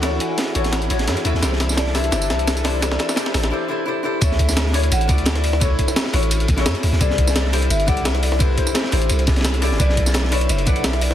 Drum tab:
RD |x---x---x---x---x---x---x---x---|x---x---x---x-x-x---x---x---x---|x---x---x---x-------------------|x---x---x---x-x-x---x---x---x---|
HH |x---x---x---x-x-x-x-x-x-x-x-x---|x---x---x---o-x-x-x-x-x-x-x-o---|x---x---x---o-x-----------------|x---x---x---o-x-x-x-x-x-x-x-o---|
TB |--------------------------------|x-----x-x---x---x-x-----x-x-----|x-----x-x---x-------------------|x-----x-x-------x---x---x-------|
SD |o-------o-----o-o-----o-o-----o-|o-o-o-o-o-o-o---o---o---o---o---|o-o-o-o-o-o-o-o-----------------|--o---o-o-o-------------o-o---o-|
BD |--------------------------------|--------------------------------|--------------------------------|o---o---------------o-----------|

RD |x---x---x---x---x---x---x---x---|x---x---x---x-x-x---x---x---x---|x---x---x---x---x---x-xxx---x---|x---x---x---x-x-x---x---x---x---|
HH |x---x---x---o-x-x-x-x-x-x-x-o---|x---x---x---o-x-x-x-x-x-x-x-o---|x---x---x---o-x-x-x-x-x-x-x-o---|x---x---x---o-x-x-x-x-x-x-x-o---|
TB |x-----x-x-------x---x---x-------|x-----x-x-------x---x---x-------|x-----x-x-------x---x---x-------|x-----x-x-------x---x---x-------|
SD |------o-o-o-o---------o-o-----o-|--o---o-o-o-------------o-o---o-|------o-o-o-o-------o-ooo-----o-|--o---o-o-o-------------o-o---o-|
BD |o---o---------------o-----------|o---o---------------o-----------|o---o---------------o-----------|o---o---------------o-----------|